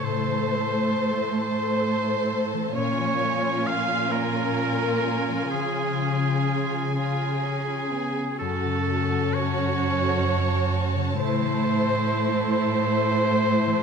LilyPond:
<<
  \new Staff \with { instrumentName = "Violin section" } { \time 6/8 \key a \major \tempo 4. = 44 a''2. | gis''2.~ | gis''2. | a''2.~ |
a''2. | }
  \new Staff \with { instrumentName = "Oboe" } { \time 6/8 \key a \major c''4. c''4 r8 | cis''4 eis''8 ais'4. | gis'4. gis'4. | a'4 cis''4. r8 |
c''4. c''4. | }
  \new Staff \with { instrumentName = "Violin section" } { \time 6/8 \key a \major c''4. c''4. | cis''4 eis''8 ais'4. | gis'4. gis'4. | a'4 cis''2 |
c''4. c''4. | }
  \new Staff \with { instrumentName = "Harp" } { \time 6/8 \key a \major <a, a a'>16 e16 a16 a'16 c''16 a'8 a'8 a'16 a16 e16 | ais,16 eis16 gis16 eis'8 gis'16 cis''16 gis'16 cis''16 eis'16 gis16 eis16 | cis16 cis'16 gis16 eis'16 cis''8 cis''16 gis'16 cis''16 eis'16 gis16 cis'16 | fis,16 cis16 a16 fis'16 cis''16 a'8 a'16 cis''16 fis'16 a16 cis16 |
a,16 e16 a16 e'16 a'16 e'16 a'16 e'16 a'16 e'16 a16 e16 | }
  \new Staff \with { instrumentName = "Viola section" } { \time 6/8 \key a \major <a a'>2. | <cis' eis'>2.~ | <cis' eis'>4. eis'8 cis'8 b8 | <cis' fis'>2. |
<a e'>2. | }
  \new Staff \with { instrumentName = "Cello section" } { \clef bass \time 6/8 \key a \major a,2. | ais,2. | cis2. | fis,2. |
a,2. | }
>>